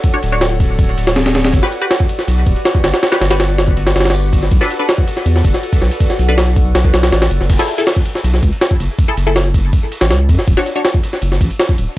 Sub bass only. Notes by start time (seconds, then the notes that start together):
0.23 D1
0.79 D1
0.97 D1
1.53 G1
2.28 B1
2.46 D1
2.83 G1
3.21 G1
3.77 G1
3.95 G1
4.51 B1
5.26 E2
5.45 F#1
5.82 B1
6.19 B1
6.75 B1
6.94 B1
7.12 A1
7.31 F#1
7.41 F#1
7.50 F#1
8.24 B1
8.43 C#2
8.80 F#1
9.17 F#1
10.01 A1
10.10 C#2
10.29 F#2
10.47 D1
11.22 F#1
11.41 A1
11.78 D1